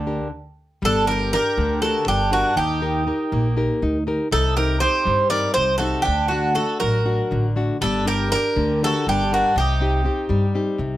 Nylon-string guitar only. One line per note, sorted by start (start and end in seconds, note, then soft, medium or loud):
0.00 0.30 D3 medium
0.07 0.27 D4 soft
0.07 0.27 G4 soft
0.07 0.27 A#4 soft
0.82 1.31 G3 medium
1.06 1.31 D4 medium
1.06 1.33 G4 soft
1.06 1.33 A#4 medium
1.32 1.73 D4 medium
1.32 1.73 G4 soft
1.32 1.73 A#4 medium
1.58 2.06 D3 medium
1.82 2.23 D4 soft
1.82 2.22 G4 soft
1.82 2.23 A#4 medium
2.08 2.56 G3 medium
2.31 2.52 D4 medium
2.31 2.52 G4 soft
2.31 2.52 A#4 medium
2.56 3.05 D#3 medium
2.81 3.06 D#4 medium
2.81 3.06 G4 soft
2.81 3.06 A#4 medium
3.07 3.47 D#4 soft
3.07 3.48 G4 soft
3.07 3.48 A#4 medium
3.33 3.81 A#3 medium
3.57 3.82 D#4 soft
3.57 3.97 G4 soft
3.57 3.97 A#4 medium
3.83 4.06 D#4 medium
4.07 4.27 D#4 medium
4.07 4.27 G4 soft
4.07 4.27 A#4 medium
4.31 4.80 C3 medium
4.57 4.80 C4 medium
4.57 4.80 D#4 soft
4.57 4.81 G4 medium
4.81 5.22 C4 medium
4.81 5.22 D#4 soft
4.81 5.22 G4 medium
5.05 5.55 G3 medium
5.31 5.71 C4 medium
5.31 5.71 D#4 soft
5.31 5.72 G4 medium
5.57 6.05 C3 medium
5.80 6.01 C4 medium
5.80 6.02 D#4 medium
5.80 6.02 G4 medium
6.06 6.55 D3 medium
6.31 6.56 A3 medium
6.31 6.56 D4 soft
6.31 6.57 F#4 medium
6.57 6.97 A3 soft
6.57 6.97 D4 soft
6.57 6.97 F#4 medium
6.81 7.04 F#3 medium
7.05 7.46 F#3 soft
7.05 7.46 D4 soft
7.05 7.46 F#4 medium
7.31 7.80 D3 medium
7.56 7.76 A3 medium
7.56 7.76 D4 soft
7.56 7.77 F#4 medium
7.81 8.30 G3 medium
8.05 8.30 D4 medium
8.05 8.31 G4 soft
8.05 8.31 A#4 medium
8.31 8.71 D4 medium
8.31 8.72 G4 soft
8.31 8.72 A#4 medium
8.56 9.05 D3 medium
8.82 9.22 D4 soft
8.82 9.22 G4 soft
8.82 9.22 A#4 medium
9.08 9.55 G3 medium
9.32 9.52 D4 medium
9.32 9.52 G4 soft
9.32 9.52 A#4 medium
9.57 10.05 C3 medium
9.80 10.04 C4 medium
9.80 10.04 D#4 soft
9.80 10.04 G4 medium
10.05 10.45 C4 soft
10.05 10.45 D#4 soft
10.05 10.45 G4 medium
10.29 10.78 G3 medium
10.55 10.95 C4 soft
10.55 10.95 D#4 soft
10.55 10.95 G4 medium
10.79 10.97 C3 medium